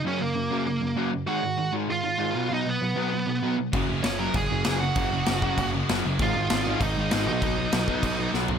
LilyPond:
<<
  \new Staff \with { instrumentName = "Lead electric guitar" } { \time 4/4 \key ges \major \tempo 4 = 196 <des' des''>8 <bes bes'>2. r8 | <ges' ges''>4. r8 <f' f''>2 | <ees' ees''>8 <ces' ces''>2. r8 | r4 <des' des''>8 <bes' bes''>8 <aes' aes''>4. <ges' ges''>8~ |
<ges' ges''>2~ <ges' ges''>8 r4. | <f' f''>2 <ees' ees''>4. <ees' ees''>8~ | <ees' ees''>2. r4 | }
  \new Staff \with { instrumentName = "Distorted electric guitar" } { \clef bass \time 4/4 \key ges \major r1 | r1 | r1 | <ges, des ges>8 <ges, des ges>8 <ges, des ges>8 <ges, des ges>8 <ges, des ges>8 <ges, des ges>8 <ges, des ges>8 <ges, des ges>8 |
<ges, des ges>8 <ges, des ges>8 <ges, des ges>8 <ges, des ges>8 <ges, des ges>8 <ges, des ges>8 <ges, des ges>8 <ges, des ges>8 | <aes, ees aes>8 <aes, ees aes>8 <aes, ees aes>8 <aes, ees aes>8 <aes, ees aes>8 <aes, ees aes>8 <aes, ees aes>8 <ces ges ces'>8 | <ces ges ces'>8 <ces ges ces'>8 <ces ges ces'>8 <ces ges ces'>8 <ces ges ces'>8 <ces ges ces'>8 <ces ges ces'>8 <ces ges ces'>8 | }
  \new Staff \with { instrumentName = "Overdriven electric guitar" } { \clef bass \time 4/4 \key ges \major <ges, des ges>8 <ges, des>8 <ges, des>8 <ges, des ges>8 <ges, des>8 <ges, des>8 <ges, des ges>8 <ges, des>8 | <aes, ees aes>8 <aes, ees>8 <aes, ees>8 <aes, ees aes>8 <aes, ees>8 <aes, ees>8 <aes, ees aes>8 <ces ges ces'>8 | <ces ges ces'>8 <ces ges>8 <ces ges>8 <ces ges ces'>8 <ces ges>8 <ces ges>8 <ces ges ces'>8 <ces ges>8 | <ges, des ges>8 <ges, des>8 <ges, des>8 <ges, des ges>8 <ges, des>8 <ges, des>8 <ges, des ges>8 <ges, des>8 |
<ges, des ges>8 <ges, des>8 <ges, des>8 <ges, des ges>8 <ges, des>8 <ges, des>8 <ges, des ges>8 <ges, des>8 | <aes, ees aes>8 <aes, ees>8 <aes, ees>8 <aes, ees aes>8 <aes, ees>8 <aes, ees>8 <aes, ees aes>8 <ces ges ces'>8 | <ces ges ces'>8 <ces ges>8 <ces ges>8 <ces ges ces'>8 <ces ges>8 <ces ges>8 <ces ges ces'>8 <ces ges>8 | }
  \new Staff \with { instrumentName = "Overdriven electric guitar" } { \clef bass \time 4/4 \key ges \major <ges, des ges>8 <ges, des>8 <ges, des>8 <ges, des ges>8 <ges, des>8 <ges, des>8 <ges, des ges>8 <ges, des>8 | <aes, ees aes>8 <aes, ees>8 <aes, ees>8 <aes, ees aes>8 <aes, ees>8 <aes, ees>8 <aes, ees aes>8 <ces ges ces'>8 | <ces ges ces'>8 <ces ges>8 <ces ges>8 <ces ges ces'>8 <ces ges>8 <ces ges>8 <ces ges ces'>8 <ces ges>8 | <ges, des ges>8 <ges, des>8 <ges, des>8 <ges, des ges>8 <ges, des>8 <ges, des>8 <ges, des ges>8 <ges, des>8 |
<ges, des ges>8 <ges, des>8 <ges, des>8 <ges, des ges>8 <ges, des>8 <ges, des>8 <ges, des ges>8 <ges, des>8 | <aes, ees aes>8 <aes, ees>8 <aes, ees>8 <aes, ees aes>8 <aes, ees>8 <aes, ees>8 <aes, ees aes>8 <ces ges ces'>8 | <ces ges ces'>8 <ces ges>8 <ces ges>8 <ces ges ces'>8 <ces ges>8 <ces ges>8 <ces ges ces'>8 <ces ges>8 | }
  \new Staff \with { instrumentName = "Picked electric bass" } { \clef bass \time 4/4 \key ges \major r1 | r1 | r1 | ges,,8 ges,,8 ges,,4 ges,,8 ges,,8 ges,,4 |
ges,,4 ges,,4 ges,,4 ges,,8 ges,,8 | aes,,8 aes,,8 aes,,4 aes,,8 aes,,8 aes,,8 ces,8 | ces,4 ces,4 ces,4 ces,8 ces,8 | }
  \new DrumStaff \with { instrumentName = "Drums" } \drummode { \time 4/4 r4 r4 r4 r4 | r4 r4 r4 r4 | r4 r4 r4 r4 | <cymc bd>4 <cymc sn>4 <cymc bd>4 <cymc sn>4 |
<cymc bd>4 <cymc sn>8 bd8 <cymc bd>4 <cymc sn>4 | <cymc bd>4 <cymc sn>4 <cymc bd>4 <cymc sn>4 | <cymc bd>4 <cymc sn>8 bd8 <cymc bd>4 sn8 tomfh8 | }
>>